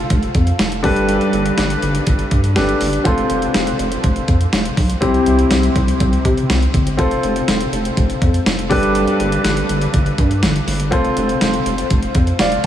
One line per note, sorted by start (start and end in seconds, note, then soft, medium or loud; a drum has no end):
0.00 0.80 F4 medium
0.00 0.80 A4 medium
0.00 0.81 C5 medium
0.00 0.81 F5 medium
0.10 0.28 F1 loud
0.10 kick loud
0.10 closed hi-hat medium
0.23 closed hi-hat soft
0.35 0.52 F2 medium
0.35 kick medium
0.35 closed hi-hat medium
0.47 closed hi-hat soft
0.59 0.86 F1 loud
0.59 snare loud
0.59 closed hi-hat medium
0.72 closed hi-hat soft
0.83 1.19 G1 medium
0.83 1.54 G2 medium
0.83 2.52 D4 medium
0.83 2.52 G4 medium
0.83 2.53 A4 medium
0.83 2.53 B4 medium
0.83 kick loud
0.83 open hi-hat medium
0.96 closed hi-hat medium
1.09 closed hi-hat medium
1.21 closed hi-hat soft
1.33 1.51 G1 medium
1.33 closed hi-hat medium
1.46 closed hi-hat medium
1.58 1.76 G1 loud
1.58 snare loud
1.58 closed hi-hat medium
1.70 closed hi-hat medium
1.82 2.00 G1 loud
1.82 closed hi-hat medium
1.95 closed hi-hat medium
2.07 2.25 G1 loud
2.07 kick loud
2.07 closed hi-hat medium
2.19 closed hi-hat soft
2.31 2.58 G2 loud
2.31 kick medium
2.31 closed hi-hat medium
2.44 closed hi-hat soft
2.56 2.74 G1 loud
2.56 3.05 D4 medium
2.56 3.05 G4 medium
2.56 3.04 A4 medium
2.56 3.06 B4 medium
2.56 snare loud
2.56 closed hi-hat medium
2.69 closed hi-hat soft
2.81 2.99 G1 medium
2.81 open hi-hat medium
2.93 closed hi-hat medium
3.04 3.23 F1 loud
3.04 4.97 C4 medium
3.04 4.98 F4 medium
3.04 4.98 A4 medium
3.04 4.99 C5 medium
3.04 kick loud
3.04 closed hi-hat medium
3.18 closed hi-hat soft
3.30 3.48 F1 medium
3.30 closed hi-hat medium
3.42 closed hi-hat medium
3.54 3.72 F1 loud
3.54 snare loud
3.54 closed hi-hat medium
3.67 closed hi-hat medium
3.79 3.97 F1 loud
3.79 closed hi-hat medium
3.92 closed hi-hat medium
4.04 4.22 F1 loud
4.04 kick loud
4.04 closed hi-hat medium
4.16 closed hi-hat soft
4.28 4.46 F2 medium
4.28 kick medium
4.28 closed hi-hat medium
4.41 closed hi-hat medium
4.53 4.71 F1 loud
4.53 snare medium
4.53 closed hi-hat medium
4.65 closed hi-hat soft
4.77 4.95 B1 medium
4.77 kick medium
4.77 open hi-hat medium
4.90 closed hi-hat medium
5.01 5.20 C2 loud
5.01 5.72 C3 medium
5.01 6.94 C4 medium
5.01 6.95 E4 medium
5.01 6.95 G4 medium
5.01 6.95 C5 medium
5.01 kick loud
5.01 closed hi-hat medium
5.14 closed hi-hat soft
5.26 5.44 C2 loud
5.26 closed hi-hat medium
5.39 closed hi-hat medium
5.51 5.69 C2 loud
5.51 snare loud
5.51 closed hi-hat medium
5.51 tambourine medium
5.63 closed hi-hat medium
5.76 5.93 C2 loud
5.76 kick medium
5.76 closed hi-hat medium
5.88 closed hi-hat medium
6.00 6.18 C2 loud
6.00 kick loud
6.00 closed hi-hat medium
6.13 closed hi-hat soft
6.25 6.43 C3 loud
6.25 kick medium
6.25 closed hi-hat medium
6.37 closed hi-hat soft
6.50 6.67 C2 loud
6.50 snare loud
6.50 closed hi-hat medium
6.50 tambourine medium
6.62 closed hi-hat soft
6.74 7.00 G1 medium
6.74 kick loud
6.74 closed hi-hat medium
6.87 closed hi-hat medium
6.97 7.16 F1 loud
6.97 8.67 C4 medium
6.97 8.67 F4 medium
6.97 8.67 A4 medium
6.97 8.68 C5 medium
6.97 kick loud
6.97 closed hi-hat medium
7.11 closed hi-hat soft
7.23 7.41 F1 loud
7.23 closed hi-hat medium
7.36 closed hi-hat medium
7.48 7.66 F1 loud
7.48 snare loud
7.48 closed hi-hat medium
7.48 tambourine medium
7.61 closed hi-hat medium
7.72 7.90 F1 medium
7.72 closed hi-hat medium
7.85 closed hi-hat medium
7.97 8.15 F1 loud
7.97 kick loud
7.97 closed hi-hat medium
8.10 closed hi-hat soft
8.22 8.39 F2 medium
8.22 kick medium
8.22 closed hi-hat medium
8.34 closed hi-hat medium
8.46 8.72 F1 loud
8.46 snare loud
8.46 closed hi-hat medium
8.46 tambourine medium
8.59 closed hi-hat soft
8.69 9.06 G1 loud
8.69 9.40 G2 medium
8.69 10.63 D4 medium
8.69 10.63 G4 medium
8.69 10.64 A4 medium
8.69 10.64 B4 medium
8.69 kick loud
8.69 open hi-hat medium
8.83 closed hi-hat medium
8.95 closed hi-hat medium
9.07 closed hi-hat soft
9.20 9.38 G1 loud
9.20 closed hi-hat medium
9.32 closed hi-hat medium
9.44 9.62 G1 loud
9.44 snare loud
9.44 closed hi-hat medium
9.44 tambourine medium
9.57 closed hi-hat medium
9.69 9.87 G1 loud
9.69 closed hi-hat medium
9.82 closed hi-hat medium
9.94 10.11 G1 loud
9.94 kick loud
9.94 closed hi-hat medium
10.06 closed hi-hat soft
10.18 10.44 G2 loud
10.18 kick medium
10.18 closed hi-hat medium
10.31 closed hi-hat soft
10.43 10.60 G1 loud
10.43 snare loud
10.43 closed hi-hat medium
10.43 tambourine medium
10.56 closed hi-hat soft
10.67 10.94 G1 medium
10.67 open hi-hat medium
10.80 closed hi-hat medium
10.91 11.10 F1 loud
10.91 12.66 C4 medium
10.91 12.66 F4 medium
10.91 12.66 A4 medium
10.91 12.66 C5 medium
10.91 kick loud
10.91 closed hi-hat medium
11.05 closed hi-hat soft
11.17 11.34 F1 loud
11.17 closed hi-hat medium
11.29 closed hi-hat medium
11.41 11.59 F1 loud
11.41 snare loud
11.41 closed hi-hat medium
11.41 tambourine medium
11.53 closed hi-hat medium
11.66 11.83 F1 loud
11.66 closed hi-hat medium
11.78 closed hi-hat medium
11.90 12.08 F1 medium
11.90 kick loud
11.90 closed hi-hat medium
12.03 closed hi-hat soft
12.15 12.33 F2 medium
12.15 kick medium
12.15 closed hi-hat medium
12.27 closed hi-hat soft
12.39 12.57 F1 loud
12.39 12.63 D5 medium
12.39 12.63 F5 medium
12.39 snare loud
12.39 closed hi-hat medium
12.39 tambourine medium
12.52 closed hi-hat soft